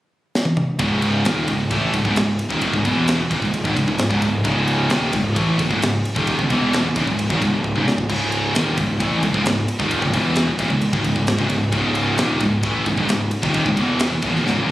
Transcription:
0.35 snare
0.45 high tom
0.57 mid tom
0.79 C#1 C#2 G#2 C#3, kick, ride
1.02 ride
1.25 D#1 D#2 A#2 D#3, snare, ride
1.48 C#1 C#2 G#2, kick, ride
1.71 A1 A2 E3 A3, kick, ride
1.93 C#1 C#2 G#2, kick, ride
2.04 C#1 C#2 G#2, kick
2.16 C#1 C#2 G#2, snare, ride
2.39 ride
2.49 D#1 D#2 A#2 D#3, kick
2.61 kick, ride
2.73 C#1 C#2 G#2, kick
2.85 E1 E2 B2 E3, kick, ride
3.08 snare, ride
3.19 muted distorted electric guitar stroke, muted picked electric bass stroke
3.30 D#1 D#2 A#2, kick, ride
3.41 C#1 C#2 G#2, kick, snare
3.54 ride
3.64 G#1 G#2 D#3, kick
3.76 C#1 C#2 G#2, kick, ride
3.88 C#1 C#2 G#2, kick
3.98 snare, ride
4.10 C#1 C#2 G#2, kick
4.21 C#1 C#2 G#2, kick, ride
4.44 C#1 C#2 G#2 C#3, kick, ride
4.68 ride
4.90 D#1 D#2 A#2 D#3, snare, ride
5.12 C#1 C#2 G#2, kick, ride
5.35 A1 A2 E3 A3, kick, ride
5.58 C#1 C#2 G#2, kick, ride
5.69 C#1 C#2 G#2, kick
5.81 C#1 C#2 G#2, snare, ride
6.05 ride
6.15 D#1 D#2 A#2 D#3, kick
6.27 kick, ride
6.39 C#1 C#2 G#2, kick
6.50 E1 E2 B2 E3, kick, ride
6.73 snare, ride
6.84 muted picked electric bass stroke, muted distorted electric guitar stroke
6.96 D#1 D#2 A#2, kick, ride
7.07 C#1 C#2 G#2, kick
7.19 ride
7.30 G#1 G#2 D#3, kick
7.41 C#1 C#2 G#2, kick, ride
7.53 C#1 C#2 G#2
7.64 kick
7.75 C#1 C#2 G#2, mid tom
7.87 C#1 C#2 G#2, snare
7.98 kick
8.10 C#1 C#2 G#2 C#3, kick, crash
8.32 ride
8.55 D#1 D#2 A#2 D#3, snare, ride
8.77 C#1 C#2 G#2, kick, ride
9.00 A1 A2 E3 A3, kick, ride
9.22 C#1 C#2 G#2, kick, ride
9.34 C#1 C#2 G#2, kick
9.45 C#1 C#2 G#2, snare, ride
9.68 ride
9.79 D#1 D#2 A#2 D#3, kick
9.91 kick, ride
10.02 C#1 C#2 G#2, kick
10.14 E1 E2 B2 E3, kick, ride
10.36 snare, ride
10.49 muted picked electric bass stroke, muted distorted electric guitar stroke
10.59 D#1 D#2 A#2, kick, ride
10.70 C#1 C#2 G#2, kick
10.81 ride
10.93 G#1 G#2 D#3, kick
11.04 C#1 C#2 G#2, kick, ride
11.16 C#1 C#2 G#2, kick
11.27 snare, ride
11.38 C#1 C#2 G#2, kick
11.49 C#1 C#2 G#2, kick, ride
11.72 C#1 C#2 G#2 C#3, kick, ride
11.95 ride
12.17 D#1 D#2 A#2 D#3, snare, ride
12.40 C#1 C#2 G#2, kick, ride
12.63 A1 A2 E3 A3, kick, ride
12.86 C#1 C#2 G#2, kick, ride
12.97 C#1 C#2 G#2, kick
13.08 C#1 C#2 G#2, snare, ride
13.31 ride
13.42 D#1 D#2 A#2 D#3, kick
13.54 kick, ride
13.66 C#1 C#2 G#2, kick
13.76 E1 E2 B2 E3, kick, ride
14.00 snare, ride
14.11 muted distorted electric guitar stroke, muted picked electric bass stroke
14.22 E1 E2 B2, kick, ride
14.34 D#1 D#2 A#2, snare
14.45 C#1 C#2 G#2, snare
14.56 D#1 D#2 A#2
14.67 C#1 C#2

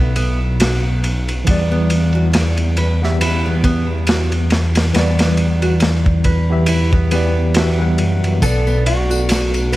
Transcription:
Already playing: B1 B2 B3 A4 D5 E5
0.16 B3, ride
0.60 F#4, snare, ride
1.04 ride
1.28 ride
1.44 E2 E3 B3, kick, ride
1.49 G3 D5
1.72 B3
1.90 ride
2.15 F#4
2.33 snare, ride
2.57 ride
2.77 B4, ride
3.02 E3 B3 G4 E5, snare
3.21 E4, ride
3.46 B3
3.64 B3, kick, ride
4.07 F#4, snare, ride
4.32 ride
4.50 snare, ride
4.75 snare, ride
4.93 E2 E3 G3 B3, snare, ride
4.99 D5
5.19 B3, snare, ride
5.37 ride
5.62 F#4, ride
5.80 snare, ride
6.06 kick
6.24 B4, kick, ride
6.50 E3 B3 G4 E5
6.66 E4, ride
6.93 B3, kick
7.11 E3 B3 G4 D5, ride
7.54 E3 B3 F#4 G4 E5, snare, ride
7.79 E3 G3 B3 F#5
7.98 F#2, ride
8.23 F#2, ride
8.40 B1 B2 B3 A4 D5, kick, ride, tambourine
8.46 D5
8.67 B3, tambourine
8.86 F#4, ride
9.10 F#4, tambourine
9.29 snare, ride, tambourine
9.54 ride, tambourine
9.72 B4, ride

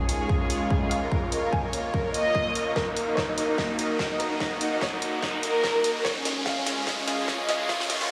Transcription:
Already playing: G#3 C#4 D#4 F4 G#4 A#4 C#5 F5, riser
0.09 G#4, closed hi-hat
0.20 G#4 D#5
0.29 kick
0.41 G#4
0.50 G#4, closed hi-hat
0.70 G#4, kick
0.82 G#4
0.91 F5, closed hi-hat
1.03 A#4
1.12 A#3 A#4 C#5, kick
1.32 A#4, closed hi-hat
1.44 A#4
1.53 G#5, kick
1.64 A#4
1.73 A#4, closed hi-hat
1.86 A#5 C#6
1.94 A#4, kick
2.05 A#4
2.14 D#5, closed hi-hat
2.35 kick
2.55 closed hi-hat
2.76 D#4 F#4 A#4 D#5, kick, snare
2.87 D#4
2.97 closed hi-hat
3.08 D#4
3.17 C#5, kick, snare
3.28 D#4
3.38 D#4, closed hi-hat
3.49 D#4
3.58 kick, snare
3.70 D#4
3.74 F#5
3.79 D#4, closed hi-hat
3.99 D#4, kick, snare
4.11 D#4
4.20 A#4, open hi-hat
4.31 D#4
4.40 D#4, kick, snare
4.61 D#4, closed hi-hat
4.72 D#4
4.81 C#5, kick, snare
4.93 D#4
5.02 D#4, closed hi-hat
5.23 D#4, kick, snare
5.34 D#4
5.43 A#4, closed hi-hat
5.64 kick, snare
5.84 open hi-hat
6.05 G#3 C#4 F4 C#5, kick, snare
6.16 C#4
6.25 snare, closed hi-hat
6.36 C#4
6.46 F5, kick, snare
6.53 C#4 F5
6.61 G#4 D#5
6.66 C#4, snare, closed hi-hat
6.78 C#4
6.87 kick, snare
6.98 C#4
7.07 C#4, snare, closed hi-hat
7.28 C#4, kick, snare
7.39 C#4
7.49 D#5, snare, open hi-hat
7.60 F4
7.69 A#3 F4 A#4, kick, snare
7.80 snare
7.90 F4, snare, closed hi-hat
8.01 F4, snare

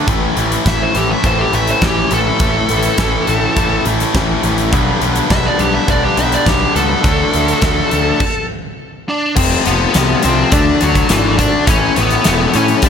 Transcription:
0.07 A1 A2 E3 A3 C#4 E4, kick, closed hi-hat
0.36 A1 A2 E3 A3 C#4 E4, closed hi-hat
0.52 closed hi-hat
0.64 A1 A2 E3 A3 C#4 E4, kick, snare, closed hi-hat
0.68 E5
0.83 C5
0.94 A1 A2 E3 A3 C#4 E4 G4, closed hi-hat
1.12 E5
1.22 A1 A2 E3 A3 C#4 E4 C5, kick, closed hi-hat
1.41 G4
1.51 A1 A2 E3 A3 C#4 E4 E5, closed hi-hat
1.67 C5, closed hi-hat
1.81 A1 A2 E3 A3 C#4 E4 G4, kick, snare, closed hi-hat
2.10 A1 A2 E3 A3 C#4 E4 A4, closed hi-hat
2.40 A1 A2 E3 A3 C#4 E4, kick, closed hi-hat
2.69 A1 A2 E3 A3 C#4 E4, closed hi-hat
2.83 closed hi-hat
2.98 A1 A2 E3 A3 C#4 E4, kick, snare, closed hi-hat
3.27 A1 A2 E3 A3 C#4 E4, closed hi-hat
3.56 A1 A2 E3 A3 C#4 E4, kick, closed hi-hat
3.85 A1 A2 E3 A3 C#4 E4, closed hi-hat
4.00 snare, closed hi-hat
4.15 A1 A2 E3 A3 C#4 E4, kick, snare, closed hi-hat
4.43 A1 A2 E3 A3 C#4 E4, closed hi-hat
4.58 closed hi-hat
4.71 B1 G2 B2 D3 G3 B3 D4, kick, closed hi-hat
5.00 B1 G2 B2 D3 G3 B3 D4, closed hi-hat
5.16 closed hi-hat
5.30 B1 G2 B2 D3 G3 B3 D4 E5, kick, snare, closed hi-hat
5.46 D5
5.58 B1 G2 B2 D3 G3 B3 D4 G4, closed hi-hat
5.74 E5
5.87 B1 G2 B2 D3 G3 B3 D4 D5, kick, closed hi-hat
6.05 G4
6.16 B1 G2 B2 D3 G3 B3 D4 E5, closed hi-hat
6.32 D5, closed hi-hat
6.45 B1 G2 B2 D3 G3 B3 D4 G4, kick, snare, closed hi-hat
6.74 C#2 G2 B2 D3 G3 B3 D4 A4, closed hi-hat
7.04 D2 D3 F#3 A3 D4, kick, closed hi-hat
7.34 D2 D3 F#3 A3 D4, closed hi-hat
7.48 closed hi-hat
7.62 D2 D3 F#3 A3 D4, kick, snare, closed hi-hat
7.91 D2 D3 F#3 A3 D4, closed hi-hat
8.20 kick, crash
9.09 D4 D5
9.36 F1 F2 C3 F3 C4 F4 A4 C5 A5, kick, crash
9.64 F1 F2 C3 F3 B3 B4, closed hi-hat
9.94 C2 F2 C3 F3, snare, closed hi-hat
10.23 C2 F2 C3 F3 C4 C5, closed hi-hat
10.52 D2 D3 A3 D4 F#4 D5, kick, closed hi-hat
10.81 D2 D3 F#3 A3 D4 F#4, closed hi-hat
10.95 kick, closed hi-hat
11.09 G#1 D3 E3 A3 D4 E4, snare, closed hi-hat
11.38 D3 A3 D4 D5, kick, closed hi-hat
11.67 A1 A2 E3 A3 C#4 A4 C#5 E5 B5, kick, closed hi-hat
11.95 A1 A2 E3 A3 B3 B4, closed hi-hat
12.10 closed hi-hat
12.24 E1 A2 E3 A3, snare, closed hi-hat
12.53 A2 E3 A3 C#4 C#5, closed hi-hat
12.68 closed hi-hat
12.82 G1 G2 D3 G3 D4 B4 D5 D6, kick, closed hi-hat

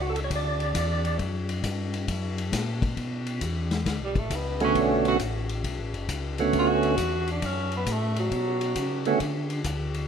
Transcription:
Already playing: C#2
0.01 F#4
0.10 A4
0.16 ride
0.24 C#5
0.30 D2, kick, ride
0.35 D5
0.60 ride
0.74 E2, kick, hi-hat pedal, ride
1.05 ride
1.19 F#2, kick, ride
1.49 ride
1.63 G2, kick, hi-hat pedal, ride
1.94 ride
2.08 F#2, kick, ride
2.38 ride
2.52 A#2, kick, snare, hi-hat pedal, ride
2.82 kick, ride
2.97 B2, kick, ride
3.27 ride
3.41 E2, kick, hi-hat pedal, ride
3.71 snare, ride
3.85 D2, kick, snare, ride
4.00 B1
4.04 G3
4.15 A1 A3, kick, ride
4.30 C#2, kick, hi-hat pedal, ride
4.35 B3
4.60 D3 A3 B3 C#4 F#4, ride
4.75 B1, kick, ride
4.79 D4
5.05 F#4, ride
5.19 A1, kick, hi-hat pedal, ride
5.49 ride
5.64 B1, kick, ride
5.79 A1
5.93 F#1, ride
6.08 C#2, kick, hi-hat pedal, ride
6.38 D3 A3 B3 C#4 F#4, ride
6.53 D2, kick, ride
6.59 F#4
6.83 ride
6.97 E2, kick, hi-hat pedal, ride
7.28 D4, ride
7.42 F#2 C#4, kick, ride
7.72 ride
7.76 B3
7.86 A2, kick, hi-hat pedal, ride
7.92 A3
8.16 F#3, ride
8.31 B2, kick, ride
8.61 ride
8.75 C#3, kick, hi-hat pedal, ride
9.05 D3 A3 B3 C#4 F#4, ride
9.20 D3, kick, ride
9.50 ride
9.64 D2, kick, hi-hat pedal, ride
9.94 ride

